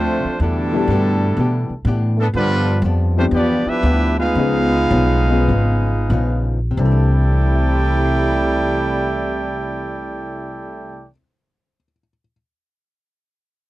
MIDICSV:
0, 0, Header, 1, 7, 480
1, 0, Start_track
1, 0, Key_signature, 0, "major"
1, 0, Tempo, 486224
1, 403, Time_signature, 4, 2, 24, 8
1, 3285, Tempo, 518583
1, 4245, Tempo, 567108
1, 5205, Tempo, 642398
1, 6165, Tempo, 694444
1, 10941, End_track
2, 0, Start_track
2, 0, Title_t, "Trumpet section"
2, 0, Program_c, 0, 61
2, 0, Note_on_c, 0, 57, 89
2, 0, Note_on_c, 0, 62, 87
2, 0, Note_on_c, 0, 65, 81
2, 0, Note_on_c, 0, 72, 102
2, 364, Note_off_c, 0, 57, 0
2, 365, Note_off_c, 0, 62, 0
2, 367, Note_off_c, 0, 72, 0
2, 368, Note_off_c, 0, 65, 0
2, 402, Note_on_c, 0, 64, 80
2, 405, Note_on_c, 0, 69, 98
2, 406, Note_on_c, 0, 55, 83
2, 408, Note_on_c, 0, 62, 90
2, 1797, Note_off_c, 0, 64, 0
2, 1798, Note_off_c, 0, 69, 0
2, 1799, Note_off_c, 0, 55, 0
2, 1800, Note_off_c, 0, 62, 0
2, 2171, Note_on_c, 0, 62, 81
2, 2174, Note_on_c, 0, 69, 90
2, 2175, Note_on_c, 0, 59, 86
2, 2239, Note_off_c, 0, 62, 0
2, 2241, Note_off_c, 0, 69, 0
2, 2242, Note_off_c, 0, 59, 0
2, 2322, Note_on_c, 0, 55, 112
2, 2322, Note_on_c, 0, 62, 102
2, 2323, Note_on_c, 0, 71, 122
2, 2325, Note_on_c, 0, 65, 96
2, 2766, Note_off_c, 0, 55, 0
2, 2766, Note_off_c, 0, 62, 0
2, 2767, Note_off_c, 0, 71, 0
2, 2768, Note_off_c, 0, 65, 0
2, 3138, Note_on_c, 0, 72, 95
2, 3140, Note_on_c, 0, 62, 79
2, 3140, Note_on_c, 0, 65, 78
2, 3141, Note_on_c, 0, 57, 80
2, 3207, Note_off_c, 0, 72, 0
2, 3209, Note_off_c, 0, 62, 0
2, 3209, Note_off_c, 0, 65, 0
2, 3210, Note_off_c, 0, 57, 0
2, 3289, Note_on_c, 0, 59, 93
2, 3293, Note_on_c, 0, 67, 93
2, 3293, Note_on_c, 0, 74, 103
2, 3294, Note_on_c, 0, 65, 88
2, 3581, Note_off_c, 0, 59, 0
2, 3583, Note_off_c, 0, 67, 0
2, 3583, Note_off_c, 0, 74, 0
2, 3584, Note_off_c, 0, 65, 0
2, 3612, Note_on_c, 0, 62, 90
2, 3613, Note_on_c, 0, 67, 101
2, 3613, Note_on_c, 0, 71, 102
2, 3613, Note_on_c, 0, 76, 116
2, 4073, Note_off_c, 0, 71, 0
2, 4083, Note_on_c, 0, 68, 96
2, 4084, Note_on_c, 0, 71, 92
2, 4085, Note_on_c, 0, 77, 111
2, 4088, Note_on_c, 0, 63, 103
2, 4089, Note_off_c, 0, 62, 0
2, 4090, Note_off_c, 0, 67, 0
2, 4090, Note_off_c, 0, 76, 0
2, 5968, Note_off_c, 0, 68, 0
2, 5969, Note_off_c, 0, 71, 0
2, 5969, Note_off_c, 0, 77, 0
2, 5970, Note_off_c, 0, 63, 0
2, 6166, Note_on_c, 0, 69, 84
2, 6167, Note_on_c, 0, 64, 81
2, 6168, Note_on_c, 0, 74, 92
2, 6169, Note_on_c, 0, 79, 92
2, 9117, Note_off_c, 0, 69, 0
2, 9118, Note_off_c, 0, 64, 0
2, 9119, Note_off_c, 0, 74, 0
2, 9120, Note_off_c, 0, 79, 0
2, 10941, End_track
3, 0, Start_track
3, 0, Title_t, "Grand piano"
3, 0, Program_c, 1, 0
3, 720, Note_on_c, 1, 52, 72
3, 727, Note_on_c, 1, 55, 69
3, 734, Note_on_c, 1, 59, 62
3, 736, Note_on_c, 1, 62, 66
3, 739, Note_on_c, 1, 67, 85
3, 863, Note_off_c, 1, 52, 0
3, 866, Note_off_c, 1, 55, 0
3, 870, Note_off_c, 1, 59, 0
3, 871, Note_off_c, 1, 62, 0
3, 872, Note_off_c, 1, 67, 0
3, 3129, Note_on_c, 1, 53, 66
3, 3132, Note_on_c, 1, 55, 64
3, 3136, Note_on_c, 1, 59, 66
3, 3141, Note_on_c, 1, 62, 67
3, 3143, Note_on_c, 1, 67, 84
3, 3728, Note_off_c, 1, 53, 0
3, 3729, Note_off_c, 1, 55, 0
3, 3731, Note_off_c, 1, 59, 0
3, 3733, Note_off_c, 1, 62, 0
3, 3734, Note_off_c, 1, 67, 0
3, 4247, Note_on_c, 1, 59, 69
3, 4248, Note_on_c, 1, 53, 73
3, 4254, Note_on_c, 1, 61, 69
3, 4255, Note_on_c, 1, 63, 69
3, 4260, Note_on_c, 1, 68, 82
3, 4527, Note_off_c, 1, 53, 0
3, 4527, Note_off_c, 1, 59, 0
3, 4530, Note_off_c, 1, 61, 0
3, 4531, Note_off_c, 1, 63, 0
3, 4533, Note_off_c, 1, 68, 0
3, 5028, Note_on_c, 1, 53, 67
3, 5036, Note_on_c, 1, 59, 67
3, 5038, Note_on_c, 1, 61, 66
3, 5040, Note_on_c, 1, 63, 59
3, 5046, Note_on_c, 1, 68, 81
3, 5182, Note_off_c, 1, 53, 0
3, 5186, Note_off_c, 1, 59, 0
3, 5187, Note_off_c, 1, 61, 0
3, 5187, Note_off_c, 1, 63, 0
3, 5191, Note_off_c, 1, 68, 0
3, 6156, Note_on_c, 1, 48, 62
3, 6164, Note_on_c, 1, 60, 62
3, 6168, Note_on_c, 1, 62, 62
3, 6172, Note_on_c, 1, 64, 60
3, 6177, Note_on_c, 1, 69, 72
3, 6646, Note_on_c, 1, 72, 46
3, 6697, Note_on_c, 1, 76, 42
3, 6751, Note_on_c, 1, 81, 42
3, 6816, Note_on_c, 1, 84, 39
3, 6886, Note_on_c, 1, 88, 38
3, 7042, Note_on_c, 1, 96, 34
3, 9135, Note_off_c, 1, 48, 0
3, 9143, Note_off_c, 1, 60, 0
3, 9147, Note_off_c, 1, 62, 0
3, 9151, Note_off_c, 1, 64, 0
3, 9156, Note_off_c, 1, 69, 0
3, 9598, Note_off_c, 1, 72, 0
3, 9649, Note_off_c, 1, 76, 0
3, 9702, Note_off_c, 1, 81, 0
3, 9767, Note_off_c, 1, 84, 0
3, 9838, Note_off_c, 1, 88, 0
3, 9993, Note_off_c, 1, 96, 0
3, 10941, End_track
4, 0, Start_track
4, 0, Title_t, "Hollow-body jazz guitar"
4, 0, Program_c, 2, 26
4, 0, Note_on_c, 2, 50, 60
4, 0, Note_on_c, 2, 57, 64
4, 0, Note_on_c, 2, 60, 62
4, 0, Note_on_c, 2, 65, 72
4, 262, Note_off_c, 2, 50, 0
4, 266, Note_off_c, 2, 60, 0
4, 268, Note_off_c, 2, 57, 0
4, 270, Note_off_c, 2, 65, 0
4, 404, Note_on_c, 2, 52, 51
4, 415, Note_on_c, 2, 59, 53
4, 422, Note_on_c, 2, 62, 62
4, 434, Note_on_c, 2, 67, 58
4, 741, Note_off_c, 2, 52, 0
4, 747, Note_off_c, 2, 59, 0
4, 750, Note_off_c, 2, 62, 0
4, 756, Note_off_c, 2, 67, 0
4, 882, Note_on_c, 2, 52, 67
4, 892, Note_on_c, 2, 59, 78
4, 894, Note_on_c, 2, 62, 75
4, 905, Note_on_c, 2, 67, 86
4, 1219, Note_off_c, 2, 52, 0
4, 1224, Note_off_c, 2, 59, 0
4, 1225, Note_off_c, 2, 62, 0
4, 1231, Note_off_c, 2, 67, 0
4, 1356, Note_on_c, 2, 52, 55
4, 1371, Note_on_c, 2, 59, 60
4, 1377, Note_on_c, 2, 62, 56
4, 1387, Note_on_c, 2, 67, 63
4, 1695, Note_off_c, 2, 52, 0
4, 1703, Note_off_c, 2, 59, 0
4, 1706, Note_off_c, 2, 62, 0
4, 1711, Note_off_c, 2, 67, 0
4, 1845, Note_on_c, 2, 52, 68
4, 1850, Note_on_c, 2, 59, 69
4, 1855, Note_on_c, 2, 62, 83
4, 1859, Note_on_c, 2, 67, 75
4, 2179, Note_off_c, 2, 52, 0
4, 2182, Note_off_c, 2, 59, 0
4, 2184, Note_off_c, 2, 62, 0
4, 2186, Note_off_c, 2, 67, 0
4, 2318, Note_on_c, 2, 43, 56
4, 2329, Note_on_c, 2, 53, 53
4, 2335, Note_on_c, 2, 59, 61
4, 2341, Note_on_c, 2, 62, 54
4, 2656, Note_off_c, 2, 43, 0
4, 2661, Note_off_c, 2, 53, 0
4, 2665, Note_off_c, 2, 59, 0
4, 2668, Note_off_c, 2, 62, 0
4, 2807, Note_on_c, 2, 43, 74
4, 2810, Note_on_c, 2, 53, 76
4, 2816, Note_on_c, 2, 59, 76
4, 2820, Note_on_c, 2, 62, 85
4, 3146, Note_off_c, 2, 43, 0
4, 3148, Note_off_c, 2, 53, 0
4, 3151, Note_off_c, 2, 59, 0
4, 3153, Note_off_c, 2, 62, 0
4, 3290, Note_on_c, 2, 43, 53
4, 3300, Note_on_c, 2, 53, 51
4, 3308, Note_on_c, 2, 59, 47
4, 3317, Note_on_c, 2, 62, 53
4, 3620, Note_off_c, 2, 43, 0
4, 3624, Note_off_c, 2, 53, 0
4, 3628, Note_off_c, 2, 59, 0
4, 3633, Note_off_c, 2, 62, 0
4, 3762, Note_on_c, 2, 43, 61
4, 3766, Note_on_c, 2, 53, 66
4, 3770, Note_on_c, 2, 59, 69
4, 3775, Note_on_c, 2, 62, 75
4, 4102, Note_off_c, 2, 43, 0
4, 4105, Note_off_c, 2, 53, 0
4, 4107, Note_off_c, 2, 59, 0
4, 4109, Note_off_c, 2, 62, 0
4, 4246, Note_on_c, 2, 49, 55
4, 4251, Note_on_c, 2, 53, 51
4, 4259, Note_on_c, 2, 59, 60
4, 4266, Note_on_c, 2, 63, 54
4, 4573, Note_off_c, 2, 49, 0
4, 4576, Note_off_c, 2, 53, 0
4, 4580, Note_off_c, 2, 59, 0
4, 4583, Note_off_c, 2, 63, 0
4, 4701, Note_on_c, 2, 49, 83
4, 4705, Note_on_c, 2, 53, 90
4, 4708, Note_on_c, 2, 59, 91
4, 4715, Note_on_c, 2, 63, 85
4, 5052, Note_off_c, 2, 49, 0
4, 5054, Note_off_c, 2, 53, 0
4, 5055, Note_off_c, 2, 59, 0
4, 5059, Note_off_c, 2, 63, 0
4, 5195, Note_on_c, 2, 49, 59
4, 5203, Note_on_c, 2, 53, 53
4, 5207, Note_on_c, 2, 59, 61
4, 5211, Note_on_c, 2, 63, 58
4, 5524, Note_off_c, 2, 49, 0
4, 5528, Note_off_c, 2, 53, 0
4, 5530, Note_off_c, 2, 59, 0
4, 5532, Note_off_c, 2, 63, 0
4, 5661, Note_on_c, 2, 49, 68
4, 5668, Note_on_c, 2, 53, 72
4, 5672, Note_on_c, 2, 59, 76
4, 5679, Note_on_c, 2, 63, 84
4, 6012, Note_off_c, 2, 49, 0
4, 6015, Note_off_c, 2, 53, 0
4, 6017, Note_off_c, 2, 59, 0
4, 6021, Note_off_c, 2, 63, 0
4, 6109, Note_on_c, 2, 48, 65
4, 6170, Note_on_c, 2, 52, 69
4, 6214, Note_on_c, 2, 57, 72
4, 6258, Note_on_c, 2, 62, 77
4, 9092, Note_off_c, 2, 48, 0
4, 9149, Note_off_c, 2, 52, 0
4, 9193, Note_off_c, 2, 57, 0
4, 9237, Note_off_c, 2, 62, 0
4, 10941, End_track
5, 0, Start_track
5, 0, Title_t, "Trombone section"
5, 0, Program_c, 3, 61
5, 0, Note_on_c, 3, 53, 88
5, 0, Note_on_c, 3, 57, 88
5, 0, Note_on_c, 3, 60, 92
5, 361, Note_off_c, 3, 60, 0
5, 362, Note_off_c, 3, 57, 0
5, 363, Note_off_c, 3, 53, 0
5, 383, Note_on_c, 3, 57, 85
5, 386, Note_on_c, 3, 47, 91
5, 387, Note_on_c, 3, 50, 89
5, 1788, Note_off_c, 3, 57, 0
5, 1789, Note_off_c, 3, 47, 0
5, 1789, Note_off_c, 3, 50, 0
5, 2143, Note_on_c, 3, 57, 80
5, 2217, Note_off_c, 3, 57, 0
5, 2312, Note_on_c, 3, 50, 111
5, 2313, Note_on_c, 3, 59, 105
5, 2315, Note_on_c, 3, 53, 112
5, 2761, Note_off_c, 3, 50, 0
5, 2762, Note_off_c, 3, 59, 0
5, 2763, Note_off_c, 3, 53, 0
5, 3146, Note_on_c, 3, 60, 76
5, 3214, Note_off_c, 3, 60, 0
5, 3291, Note_on_c, 3, 59, 82
5, 3295, Note_on_c, 3, 53, 91
5, 3295, Note_on_c, 3, 62, 86
5, 3582, Note_off_c, 3, 59, 0
5, 3584, Note_off_c, 3, 53, 0
5, 3585, Note_off_c, 3, 62, 0
5, 3595, Note_on_c, 3, 64, 91
5, 3599, Note_on_c, 3, 53, 92
5, 3599, Note_on_c, 3, 59, 95
5, 4069, Note_off_c, 3, 59, 0
5, 4080, Note_on_c, 3, 56, 103
5, 4080, Note_on_c, 3, 59, 106
5, 4081, Note_off_c, 3, 64, 0
5, 4082, Note_on_c, 3, 65, 107
5, 4083, Note_off_c, 3, 53, 0
5, 5967, Note_off_c, 3, 56, 0
5, 5967, Note_off_c, 3, 59, 0
5, 5968, Note_off_c, 3, 65, 0
5, 6154, Note_on_c, 3, 48, 111
5, 6155, Note_on_c, 3, 55, 111
5, 6158, Note_on_c, 3, 57, 107
5, 6158, Note_on_c, 3, 64, 101
5, 9106, Note_off_c, 3, 48, 0
5, 9107, Note_off_c, 3, 55, 0
5, 9110, Note_off_c, 3, 57, 0
5, 9110, Note_off_c, 3, 64, 0
5, 10941, End_track
6, 0, Start_track
6, 0, Title_t, "Upright bass"
6, 0, Program_c, 4, 32
6, 0, Note_on_c, 4, 38, 104
6, 220, Note_off_c, 4, 38, 0
6, 391, Note_on_c, 4, 40, 90
6, 861, Note_off_c, 4, 40, 0
6, 865, Note_on_c, 4, 43, 98
6, 1336, Note_off_c, 4, 43, 0
6, 1349, Note_on_c, 4, 47, 92
6, 1653, Note_off_c, 4, 47, 0
6, 1823, Note_on_c, 4, 45, 104
6, 2294, Note_off_c, 4, 45, 0
6, 2305, Note_on_c, 4, 43, 91
6, 2777, Note_off_c, 4, 43, 0
6, 2783, Note_on_c, 4, 41, 110
6, 3264, Note_off_c, 4, 41, 0
6, 3270, Note_on_c, 4, 40, 101
6, 3572, Note_off_c, 4, 40, 0
6, 3749, Note_on_c, 4, 38, 107
6, 4227, Note_off_c, 4, 38, 0
6, 4235, Note_on_c, 4, 37, 99
6, 4693, Note_off_c, 4, 37, 0
6, 4704, Note_on_c, 4, 35, 105
6, 5185, Note_off_c, 4, 35, 0
6, 5192, Note_on_c, 4, 32, 94
6, 5648, Note_off_c, 4, 32, 0
6, 5653, Note_on_c, 4, 34, 100
6, 6143, Note_off_c, 4, 34, 0
6, 6157, Note_on_c, 4, 36, 97
6, 9109, Note_off_c, 4, 36, 0
6, 10941, End_track
7, 0, Start_track
7, 0, Title_t, "Muted upright bass strokes"
7, 240, Note_on_c, 9, 29, 43
7, 338, Note_off_c, 9, 29, 0
7, 1672, Note_on_c, 9, 29, 43
7, 1770, Note_off_c, 9, 29, 0
7, 3591, Note_on_c, 9, 29, 43
7, 3683, Note_off_c, 9, 29, 0
7, 10941, End_track
0, 0, End_of_file